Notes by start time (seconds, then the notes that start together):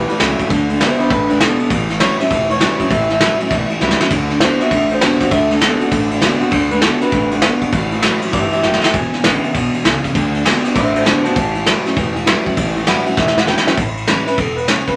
Already playing: E2
0.08 A2 E3 G4 B4, ride
0.20 C#2 A2 E3 F#3 G3 C#4 E4 A4, snare, ride
0.39 A2 F#3, kick, ride
0.50 D2 D3 A3, kick, ride
0.70 D3 A3, ride
0.80 D3 A3 B3 C4 E4 F#4 C5, snare, ride
0.99 D3 B3 E4 C5, muted upright bass stroke, ride
1.10 A1 C3 D3 A3 D4 B4, kick, ride
1.29 D3 A3 D4 B4, ride
1.40 B2 D3 B3 A4, snare, ride
1.60 D3 B3, muted upright bass stroke, ride
1.70 A1 A2 E3, kick, ride
1.90 A2 E3, snare, ride
2.00 A2 E3 F#3 G3 C#4 E4 C#5, snare, ride
2.20 A2 F#3 C#4 E4 E5, muted upright bass stroke, snare, ride
2.30 E1 E2 A2 E3, kick, ride
2.50 A2 E3 C#5, ride
2.60 A2 E3 F#3 G3 C#4 E4, snare, ride
2.80 A2 F#3 C#4 E4, kick, ride
2.90 A1 A2 E3 E5, kick, ride
3.10 A2 E3 E5, snare, ride
3.20 A2 E3 F#3 G3 C#4 E4, snare, ride
3.40 A2 F#3 C#4 E4, muted upright bass stroke, ride
3.51 B1 E2 A2 E3, kick, snare, ride
3.70 A2 E3, muted upright bass stroke, ride
3.81 C#2 A2 E3 F#3 G3 C#4 E4, snare
3.91 snare
4.00 A2 F#3 C#4 E4, snare
4.11 D2 D3 A3, kick, ride
4.30 D3 A3, snare, ride
4.41 D3 A3 B3 C4 F#4 C5, snare, ride
4.60 D3 B3 C4 F#4 E5, muted upright bass stroke, snare, ride
4.71 A1 A2 D3 A3, kick, snare, ride
4.90 D3 A3 C5, ride
5.01 D3 A3 B3 C4 F#4, snare, ride
5.20 D3 B3 C4 F#4, kick, snare, ride
5.31 D2 D3 A3 E5, kick, ride
5.51 D3 A3 A4, snare, ride
5.61 D3 A3 B3 C4 F#4, snare, ride
5.80 D3 B3 C4 F#4, muted upright bass stroke, ride
5.91 A1 A2 D3 A3, kick, snare, ride
6.11 D3 A3, ride
6.21 D3 A3 B3 C4 F#4, snare, ride
6.40 D3 B3 C4 F#4, muted upright bass stroke, ride
6.51 D2 D3 A3, kick, ride
6.71 D3 A3 B4, ride
6.81 D3 A3 B3 C4 F#4 A4, snare, ride
7.01 D3 B3 C4 F#4 B4, muted upright bass stroke, snare, ride
7.12 A1 C3 D3 A3, kick, ride
7.31 D3 A3 F#4, ride
7.42 G2 D3 B3, snare, ride
7.61 D3 B3, kick, ride
7.72 A1 A2 E3, kick, ride
7.92 A2 E3, ride
8.03 A2 E3 F#3 G3 C#4 E4, snare, ride
8.22 A2 F#3, ride
8.32 G1 G2 A2 E3 G4 E5, kick, snare, ride
8.52 A2 E3 G4 E5, muted upright bass stroke, ride
8.63 F#1 F#2 A2 F#3 E5 G5, snare
8.73 snare
8.82 A2 F#3 E5 G5, muted upright bass stroke, snare
8.94 E1 E2 B2 G#5, kick, ride
9.13 E2 B2, snare, ride
9.24 A1 E2 C#3 D3 G#3 B3 E4, snare, ride
9.44 E2 C#3 B3 E4, ride
9.55 B1 E2 B2, kick, ride
9.74 E2 B2, ride
9.85 C#2 E2 C#3, snare, ride
10.04 E2 C#3, kick, snare, ride
10.15 D2 D3 A3, kick, ride
10.34 D3 A3, ride
10.45 D3 A3 B3 C4 F#4, snare, ride
10.65 D3 B3 C4 F#4, muted upright bass stroke, snare, ride
10.75 A1 A2 D3 A3 C5 E5, kick, snare, ride
10.95 D3 A3 C5 E5, ride
11.05 D3 A3 B3 C4 F#4 C5 A5, snare, ride
11.24 D3 B3 C4 F#4 C5 A5, snare, ride
11.36 A1 A2 E3 A5, kick, ride
11.55 A2 E3, ride
11.66 A2 E3 F#3 G3 C#4 E4, snare, ride
11.85 A2 F#3 C#4 E4, muted upright bass stroke, snare, ride
11.96 E1 E2 A2 E3, kick, snare, ride
12.16 A2 E3, ride
12.26 A2 E3 F#3 G3 C#4 E4, snare, ride
12.46 A2 F#3 C#4 E4, kick, ride
12.57 A1 A2 E3, kick, ride
12.76 A2 E3, ride
12.86 A2 E3 F#3 G3 C#4 E4 F#5, snare, ride
13.06 A2 F#3 C#4 E4, muted upright bass stroke, ride
13.17 E1 E2 A2 E3 E5, kick, snare
13.28 snare
13.37 A2 E3 F#5, snare
13.47 A2 E3 F#3 G3 C#4 E4 G5, snare
13.58 snare
13.66 A2 F#3 C#4 E4, muted upright bass stroke, snare
13.77 A1 A2, kick, ride
13.97 ride
14.07 E3 G3 C#4 E4, snare, ride
14.26 C#4 E4 B4, muted upright bass stroke, snare, ride
14.38 E1 B2 A4, kick, ride
14.56 B4, ride
14.68 C#3 C#5, snare, ride
14.87 B4, kick, snare, ride